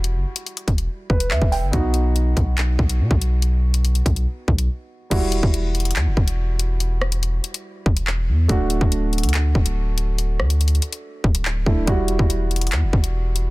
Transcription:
Already playing: E1 G3 E4 F#4
0.04 closed hi-hat
0.15 F#1
0.36 closed hi-hat
0.46 closed hi-hat
0.57 closed hi-hat
0.68 E1, kick, closed hi-hat
0.78 closed hi-hat
1.10 E1 B4, kick
1.20 closed hi-hat
1.31 E2 E5, clap
1.42 E1, kick
1.52 G5, open hi-hat
1.63 G1
1.71 B1 B3 D#4 F#4, kick, closed hi-hat
1.94 closed hi-hat
2.16 closed hi-hat
2.37 B1, kick, closed hi-hat
2.57 clap, closed hi-hat
2.79 B1, kick
2.90 closed hi-hat
3.00 B2
3.11 B1, kick
3.22 closed hi-hat
3.42 closed hi-hat
3.74 closed hi-hat
3.85 closed hi-hat
3.95 closed hi-hat
4.06 B1, kick, closed hi-hat
4.16 closed hi-hat
4.48 B1, kick
4.58 closed hi-hat
5.10 E1 G3 E4 F#4, kick, closed hi-hat, crash
5.32 closed hi-hat
5.43 E1, kick
5.54 closed hi-hat
5.75 closed hi-hat
5.80 closed hi-hat
5.85 closed hi-hat
5.91 closed hi-hat
5.96 E2, clap, closed hi-hat
6.06 E1
6.17 E1, kick
6.28 closed hi-hat
6.59 closed hi-hat
6.80 closed hi-hat
7.02 cross-stick
7.12 closed hi-hat
7.23 closed hi-hat
7.44 closed hi-hat
7.54 closed hi-hat
7.86 E1, kick
7.97 closed hi-hat
8.07 clap
8.28 E2
8.48 D1 A3 D4 F#4, kick, closed hi-hat
8.70 closed hi-hat
8.81 D1, kick
8.92 closed hi-hat
9.13 closed hi-hat
9.18 closed hi-hat
9.23 D2, closed hi-hat
9.29 closed hi-hat
9.34 clap, closed hi-hat
9.55 D1, kick
9.66 closed hi-hat
9.98 closed hi-hat
10.18 closed hi-hat
10.40 D2, cross-stick
10.50 closed hi-hat
10.61 closed hi-hat
10.68 closed hi-hat
10.75 closed hi-hat
10.82 closed hi-hat
10.93 closed hi-hat
11.24 D1, kick
11.35 closed hi-hat
11.45 clap
11.66 D1 A3 D4 E4, kick
11.86 E1 G3 E4 F#4, kick, closed hi-hat
12.08 closed hi-hat
12.19 E1, kick
12.30 closed hi-hat
12.51 closed hi-hat
12.56 closed hi-hat
12.61 closed hi-hat
12.67 closed hi-hat
12.72 E2, clap, closed hi-hat
12.82 E1
12.93 E1, kick
13.04 closed hi-hat
13.36 closed hi-hat

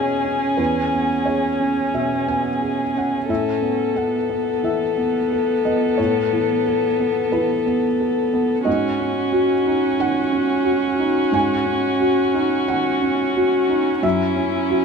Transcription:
Already playing: B2 B3 C#4 G#4 C#5 D#5 E5
0.24 C#4
0.57 E2 B4
0.93 B3
1.25 G#4 C#5
1.60 C#4
1.94 B2 E5
2.28 B3 G#5
2.61 G#4
2.95 C#4 F#5
3.29 A2 A4 E5
3.62 B3
3.95 B3 A4 F#5
4.30 B3
4.63 E3 E5
4.98 B3
5.32 A4
5.65 B3 D#5
5.97 A2 C#5
6.33 E3
6.66 A4
7.00 B3
7.32 E3 B4
7.66 B3
8.00 A4
8.34 B3
8.65 G#2 C#4 F#4 D#5
9.00 C#4
9.32 F#4
9.66 D#4
9.99 D#3 F#5
10.32 C#4
10.64 F#4
10.99 D#4
11.32 G#2 G#5
11.66 C#4
12.00 F#4
12.34 D#4
12.68 D#3 F#5
13.02 C#4
13.36 F#4
13.69 D#4
14.02 F#2 C#4 E4 E5
14.36 C#4
14.70 F#4

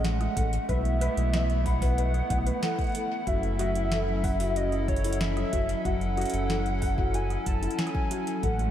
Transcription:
Already playing: A1 G#3 A3 C#4
0.04 F#5, snare, closed hi-hat
0.21 cross-stick, closed hi-hat
0.37 A1 A4, kick, closed hi-hat
0.53 closed hi-hat
0.69 B1 B3 E4 B4 E5, kick, closed hi-hat
0.85 closed hi-hat
1.01 B4, closed hi-hat
1.17 B1, closed hi-hat
1.33 D#5, snare, closed hi-hat
1.50 closed hi-hat
1.66 F#5 B5, kick, open hi-hat
1.82 B4, kick, open hi-hat
1.98 B4, closed hi-hat
2.14 cross-stick, closed hi-hat
2.30 B1 F#5, kick, closed hi-hat
2.38 cross-stick
2.46 B4, closed hi-hat
2.62 A4 F#5, snare, closed hi-hat
2.79 kick, closed hi-hat
2.81 closed hi-hat
2.84 closed hi-hat
2.87 closed hi-hat
2.89 closed hi-hat
2.92 A4, closed hi-hat
2.95 closed hi-hat
3.27 F#1 F#3 C#4 F#4 A4 E5, kick, closed hi-hat
3.43 closed hi-hat
3.59 F#4, cross-stick, closed hi-hat
3.75 closed hi-hat
3.91 A4, snare, closed hi-hat
4.24 F#5, kick, cross-stick, open hi-hat
4.40 F#4, open hi-hat
4.56 F#4 D#5, closed hi-hat
4.72 cross-stick, closed hi-hat
4.88 C#5, kick, closed hi-hat
4.96 closed hi-hat
5.04 E4, closed hi-hat, open hi-hat
5.13 closed hi-hat
5.21 E5, snare
5.37 cross-stick, closed hi-hat
5.53 F#1 F#4, kick, closed hi-hat
5.69 closed hi-hat
5.85 F#1 F#4 F#5, kick, closed hi-hat
6.01 closed hi-hat
6.17 F#4, cross-stick, closed hi-hat
6.21 closed hi-hat
6.26 closed hi-hat
6.30 F#1, closed hi-hat
6.34 closed hi-hat
6.50 A4, snare, closed hi-hat
6.66 closed hi-hat
6.82 F#5, kick, open hi-hat
6.98 F#4, kick
7.14 F#4 G#5, closed hi-hat
7.30 cross-stick, closed hi-hat
7.46 F#1 A5, kick, closed hi-hat
7.62 E4, closed hi-hat
7.71 closed hi-hat
7.79 G#5, snare, closed hi-hat
7.87 cross-stick, closed hi-hat
7.95 kick
8.11 F#4, closed hi-hat
8.27 closed hi-hat
8.43 A1 G#3 A3 A4 F#5, kick, closed hi-hat
8.59 closed hi-hat

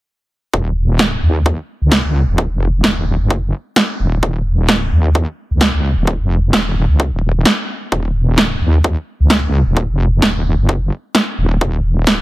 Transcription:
0.54 D#1, kick
0.77 D#1
0.99 kick, snare
1.23 D#2
1.46 kick
1.82 C#2
1.92 kick, snare
2.05 C#2
2.28 D#1
2.38 kick
2.51 F1
2.84 D#1, kick, snare
3.20 F#1
3.30 kick
3.76 kick, snare
4.00 D#1
4.23 D#1, kick
4.46 D#1
4.69 kick, snare
4.92 D#2
5.15 kick
5.51 C#2
5.61 kick, snare
5.74 C#2
5.97 D#1
6.07 kick
6.20 F1
6.53 D#1, kick, snare
6.89 C#2
7.00 kick
7.12 D#1
7.35 D#1
7.45 kick, snare
7.92 D#1, kick
8.15 D#1
8.38 kick, snare
8.61 D#2
8.84 kick
9.20 C#2
9.30 kick, snare
9.43 C#2
9.66 D#1
9.77 kick
9.89 F1
10.22 D#1, kick, snare
10.59 F#1
10.69 kick
11.15 kick, snare
11.38 D#1
11.61 D#1, kick
11.84 D#1
12.07 kick, snare

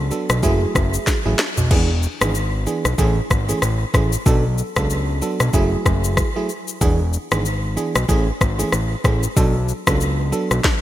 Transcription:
Already playing: C#2
0.11 F#3 B3 D4 A4, shaker
0.30 B1, cross-stick, shaker
0.43 F#1 F#3 A3 E4 G#4, kick, shaker
0.75 F#1, kick, cross-stick, shaker
0.94 shaker
1.07 kick, snare, shaker
1.25 A1 F#3 A3 E4 G#4
1.39 snare, shaker
1.57 B1, floor tom, shaker
1.70 E1 E3 B3 D4 G#4, kick, crash
2.03 shaker
2.21 G#1 E3 B3 D4 G#4, cross-stick, shaker
2.35 shaker
2.66 E3 B3 D4 G#4, shaker
2.85 B1, cross-stick, shaker
2.98 A1 E3 A3 C#4 G#4, kick, shaker
3.30 G#1, kick, cross-stick, shaker
3.48 E3 A3 C#4 G#4, shaker
3.62 A1, cross-stick, shaker
3.94 A1 E3 A3 C#4 G#4, kick, cross-stick, shaker
4.13 shaker
4.26 B1 F#3 B3 D4 A4, kick, shaker
4.58 shaker
4.76 C#2 F#3 B3 D4 A4, kick, cross-stick, shaker
4.90 shaker
5.22 F#3 B3 D4 A4, shaker
5.40 B1, cross-stick, shaker
5.53 F#1 F#3 A3 E4 G#4, kick, shaker
5.86 F#1, kick, cross-stick, shaker
6.04 shaker
6.17 kick, cross-stick, shaker
6.36 F#3 A3 E4 G#4
6.49 shaker
6.68 shaker
6.81 E1 E3 B3 D4 G#4, kick, shaker
7.13 shaker
7.31 G#1 E3 B3 D4 G#4, cross-stick, shaker
7.45 shaker
7.76 E3 B3 D4 G#4, shaker
7.95 B1, cross-stick, shaker
8.08 A1 E3 A3 C#4 G#4, kick, shaker
8.41 G#1, kick, cross-stick, shaker
8.59 E3 A3 C#4 G#4, shaker
8.72 A1, cross-stick, shaker
9.04 A1 E3 A3 C#4 G#4, kick, cross-stick, shaker
9.23 shaker
9.36 B1 F#3 B3 D4 A4, kick, shaker
9.69 shaker
9.87 C#2 F#3 B3 D4 A4, kick, cross-stick, shaker
10.01 shaker
10.32 F#3 B3 D4 A4, shaker
10.51 B1, cross-stick, shaker
10.64 kick, snare

